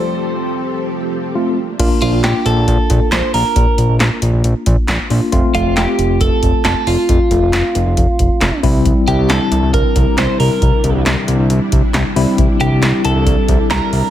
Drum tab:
CC |--------|x-------|--------|--------|
HH |--------|xxxxxxxo|xxxxxxxo|xxxxxxxo|
CP |--------|--x---x-|--x---x-|--x---x-|
SD |--------|--o---o-|--o---o-|--o---o-|
BD |--------|o---oo--|o----o--|o---oo--|

CC |--------|--------|--------|--------|
HH |xxxxxxxo|xxxxxxxo|xxxxxxxo|xxxxxxxo|
CP |--x---x-|--x---x-|--x---x-|--x---x-|
SD |--o---o-|--o---o-|--o---o-|--o---o-|
BD |o---oo-o|o---oo--|o----o--|o---oo--|